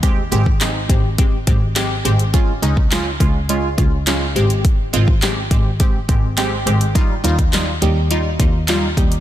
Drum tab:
HH |x-x-x-x-x-x-x-xx|x-x-x-x-x-x-x-xx|x-x-x-x-x-x-x-xx|x-xxx-x-x-x-x-xx|
CP |----x-------x---|----x-------x---|----x-------x---|----x-------x---|
SD |----o-------o---|----o-------o---|----o-------o---|----o-------o---|
BD |o--o--o-o-o-----|o--o--o---o-----|o--o--o-o-o-----|o--o------o---o-|